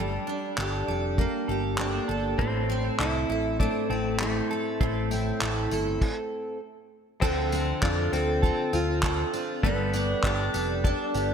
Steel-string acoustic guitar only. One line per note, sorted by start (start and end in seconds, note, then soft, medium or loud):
0.00 2.39 G3 medium
0.27 1.77 D4 medium
0.58 1.48 G4 medium
0.88 2.08 A4 medium
1.19 2.45 A#3 medium
1.49 2.45 G4 medium
1.78 2.45 D4 medium
2.09 3.29 A4 medium
2.39 4.80 A2 medium
2.70 4.20 C4 medium
3.00 3.89 E4 medium
3.30 4.50 A4 medium
3.60 6.58 A3 medium
3.90 5.40 E4 medium
4.21 5.11 C4 medium
4.51 5.71 A4 medium
4.81 6.08 A2 medium
5.11 6.58 C4 medium
5.41 6.08 E4 medium
5.71 6.58 A4 medium
7.22 9.64 D3 medium
7.22 8.13 A4 medium
7.53 8.42 C4 medium
7.83 8.72 F4 medium
8.13 9.64 A4 medium
8.44 9.02 C4 medium
8.73 9.33 F4 medium
9.04 9.70 C4 medium
9.34 9.70 F4 soft
9.64 11.34 G3 medium
9.64 10.53 A4 medium
9.94 10.83 D4 medium
10.24 11.15 G4 medium
10.54 11.34 A4 medium
10.85 11.34 D4 medium
11.15 11.34 G4 medium